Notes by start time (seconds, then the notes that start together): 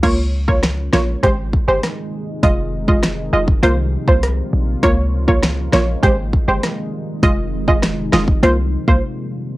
0.03 C#2 G#3 A#3 F4 C#5, kick, closed hi-hat, crash
0.48 A#3 F4 C#5, kick
0.63 cross-stick, snare, closed hi-hat
0.93 A#1 A#3 F4 C#5, cross-stick, snare
1.23 G#1 C3 G#3 G4 C5, kick, closed hi-hat
1.53 kick
1.68 G1 G#3 G4 C5
1.83 cross-stick, snare, closed hi-hat
2.43 F1 F3 G#3 F4 D#5, kick, closed hi-hat
2.88 G#3 F4 D#5, kick
3.03 cross-stick, snare, closed hi-hat
3.33 F1 G#3 F4 D#5
3.48 kick
3.63 C2 A#3 F4 C5, closed hi-hat
4.08 C2 A#3 F4 C5, kick
4.23 cross-stick, closed hi-hat
4.53 A#1
4.83 C#2 G#3 A#3 F4 C#5, kick, closed hi-hat
5.28 A#3 F4 C#5, kick
5.43 cross-stick, snare, closed hi-hat
5.72 A#1 A#3 F4 C#5, cross-stick, snare
6.03 G#1 C3 D#3 G#3 D#4 G4 C5, kick, closed hi-hat
6.33 kick
6.48 G1 G#3 G4 C5
6.63 cross-stick, snare, closed hi-hat
7.23 F1 F3 G#3 F4 D#5, kick, closed hi-hat
7.68 G#3 F4 D#5, kick
7.83 cross-stick, snare, closed hi-hat
8.12 F1 G#3 F4 D#5, cross-stick, snare
8.28 kick
8.43 C2 A#3 F4 C5, closed hi-hat
8.88 C2 A#3 F4 C5, kick